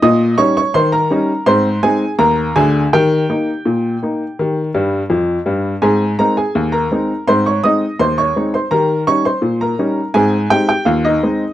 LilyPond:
<<
  \new Staff \with { instrumentName = "Upright piano" } { \time 2/4 \key aes \major \tempo 4 = 83 <ees'' ees'''>8 <des'' des'''>16 <des'' des'''>16 <c'' c'''>16 <bes' bes''>8. | <c'' c'''>8 <aes' aes''>8 <bes' bes''>8 <aes' aes''>8 | <g' g''>2~ | <g' g''>4 r4 |
<aes' aes''>8 <bes' bes''>16 <aes' aes''>8 <bes' bes''>8. | <c'' c'''>16 <des'' des'''>16 <ees'' ees'''>8 <c'' c'''>16 <des'' des'''>8 <c'' c'''>16 | <bes' bes''>8 <des'' des'''>16 <c'' c'''>8 <bes' bes''>8. | <aes' aes''>8 <g' g''>16 <g' g''>16 <f' f''>16 <ees' ees''>8. | }
  \new Staff \with { instrumentName = "Upright piano" } { \clef bass \time 2/4 \key aes \major bes,8 <g des' ees'>8 ees8 <g des' ees'>8 | <aes, c'>8 <aes c' ees'>8 ees,8 <d, d>8 | ees8 <bes ees'>8 bes,8 <bes ees'>8 | <ees g'>8 <g, g>8 <f, f>8 <g, g>8 |
<aes, c'>8 <aes c' ees'>8 ees,8 <aes c' ees'>8 | <aes, c'>8 <aes c' ees'>8 ees,8 <aes c' ees'>8 | <ees g'>8 <g des' ees'>8 bes,8 <g des' ees'>8 | <aes, c'>8 <aes c' ees'>8 ees,8 <aes c' ees'>8 | }
>>